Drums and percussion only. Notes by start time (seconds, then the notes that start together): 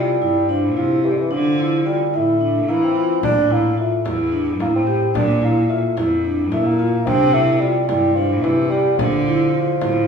3.23 frame drum
4.06 frame drum
4.60 frame drum
5.15 frame drum
5.97 frame drum
6.52 frame drum
7.07 frame drum
7.89 frame drum
8.44 frame drum
8.99 frame drum
9.26 frame drum
9.82 frame drum